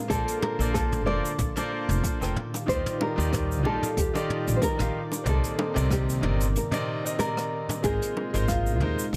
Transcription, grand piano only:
0.08 0.55 A#3 medium
0.08 0.55 F4 medium
0.08 0.55 A4 medium
0.08 0.56 C5 medium
0.08 0.56 D5 medium
0.59 1.03 A#3 medium
0.59 1.03 F4 medium
0.59 1.03 A4 medium
0.59 1.04 C5 medium
0.59 1.04 D5 medium
1.06 1.28 A#3 medium
1.06 1.29 F4 medium
1.06 1.29 A4 medium
1.06 1.29 C5 medium
1.06 1.29 D5 loud
1.56 2.16 A#3 loud
1.56 2.17 F4 medium
1.56 2.17 A4 medium
1.56 2.17 C5 medium
1.56 2.18 D5 loud
2.20 2.33 A#3 medium
2.20 2.33 F4 medium
2.20 2.34 A4 medium
2.20 2.34 C5 medium
2.20 2.34 G5 medium
2.66 3.13 D#3 medium
2.66 3.13 D#4 medium
2.66 3.13 F4 medium
2.66 3.14 G4 medium
2.66 3.14 D5 medium
3.16 3.60 D#3 medium
3.16 3.61 D#4 medium
3.16 3.61 F4 medium
3.16 3.61 G4 medium
3.16 3.62 D5 loud
3.63 3.86 D#3 medium
3.63 3.86 D#4 medium
3.63 3.86 F4 medium
3.63 3.87 G4 medium
3.63 3.87 D5 medium
4.14 4.74 D#3 medium
4.14 4.75 D#4 medium
4.14 4.75 F4 medium
4.14 4.75 G4 medium
4.14 4.76 D5 loud
4.78 4.98 D#3 medium
4.78 4.99 D#4 medium
4.78 4.99 F4 medium
4.78 4.99 G4 medium
4.78 4.99 F5 medium
5.24 5.71 C3 medium
5.24 5.72 A#3 medium
5.24 5.71 C4 medium
5.24 5.71 D#4 medium
5.24 5.72 D5 medium
5.74 6.18 C3 medium
5.74 6.19 C4 medium
5.74 6.19 D#4 medium
5.74 6.19 A#4 medium
5.74 6.19 D5 loud
6.21 6.44 C3 medium
6.21 6.44 C4 medium
6.21 6.45 D#4 medium
6.21 6.45 A#4 medium
6.21 6.45 D5 loud
6.71 7.01 C3 medium
6.71 7.01 C4 medium
6.71 7.01 D#4 medium
6.71 7.02 A#4 medium
6.71 7.02 D5 loud
7.04 7.15 C3 medium
7.04 7.16 C4 medium
7.04 7.16 D#4 medium
7.04 7.16 A#4 medium
7.04 7.16 D#5 medium
7.18 7.80 C3 medium
7.18 7.80 C4 medium
7.18 7.80 D#4 medium
7.18 7.81 A#4 medium
7.18 7.81 D5 medium
7.83 8.29 G#3 medium
7.83 8.29 D#4 medium
7.83 8.30 F4 medium
7.83 8.30 A#4 medium
7.83 8.30 C5 medium
8.33 8.77 G#3 medium
8.33 8.77 D#4 medium
8.33 8.77 F4 medium
8.33 8.78 A#4 medium
8.33 8.78 C5 loud
8.80 9.03 G#3 medium
8.80 9.03 D#4 medium
8.80 9.03 F4 medium
8.80 9.04 A#4 medium
8.80 9.04 C5 loud

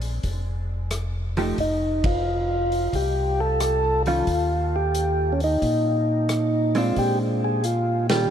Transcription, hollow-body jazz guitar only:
1.37 1.56 F3 medium
1.37 1.57 A3 medium
1.37 1.57 D#4 medium
1.37 1.57 G4 medium
4.07 4.26 D#3 soft
4.07 4.26 G3 medium
4.07 4.26 C#4 medium
4.07 4.26 F4 medium
6.75 7.60 G#3 medium
6.75 7.60 C4 medium
6.75 7.60 D4 medium
8.10 8.29 D#3 medium
8.10 8.30 G3 medium
8.10 8.30 C#4 medium
8.10 8.30 F4 medium

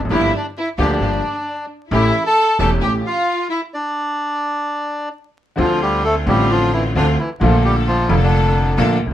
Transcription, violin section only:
0.12 0.32 E4 medium
0.35 0.45 D4 medium
0.57 0.67 E4 medium
0.79 0.89 D4 medium
0.91 1.65 D4 medium
1.91 2.22 E4 medium
2.25 2.57 A4 medium
2.59 2.69 A4 medium
2.81 2.92 G4 medium
3.04 3.46 F4 medium
3.50 3.60 E4 medium

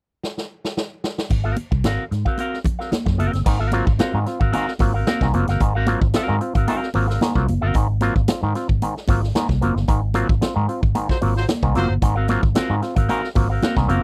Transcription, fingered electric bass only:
1.31 1.53 G#1 loud
1.72 1.82 C2 medium
1.85 1.96 G#1 medium
2.11 2.23 G#2 medium
3.06 3.17 F#2 medium
3.19 3.31 F#1 medium
3.33 3.44 G1 medium
3.46 3.80 G#1 loud
3.87 3.97 G#1 medium
3.99 muted fingered electric bass stroke soft
4.14 4.24 G#2 medium
4.41 4.51 G#1 medium
4.80 5.02 G#1 medium
5.21 5.31 C2 loud
5.34 5.46 F#1 loud
5.48 5.58 G1 medium
5.60 5.94 G#1 loud
6.01 6.12 G#1 medium
6.29 6.39 G#2 loud
6.55 6.65 G#1 medium
6.95 7.17 G#1 medium
7.35 7.46 C2 medium
7.49 7.60 F#1 medium
7.63 7.73 G1 medium
7.75 8.08 G#1 loud
8.16 8.26 G#1 loud
8.43 8.53 G#2 loud
8.69 8.80 G#1 loud
9.09 9.31 G#1 medium
9.49 9.59 C2 loud
9.62 9.74 F#1 medium
9.76 9.86 G1 medium
9.88 10.22 G#1 loud
10.29 10.40 G#1 medium
10.56 10.66 G#2 loud
10.83 10.93 G#1 medium
11.23 11.44 G#1 medium
11.63 11.73 C2 loud
11.75 11.87 F#1 medium
11.90 12.00 G1 medium
12.02 12.36 G#1 loud
12.43 12.53 G#1 loud
12.70 12.80 G#2 loud
12.97 13.07 G#1 loud
13.36 13.58 G#1 medium
13.77 13.87 C2 medium
13.88 14.00 F#1 medium

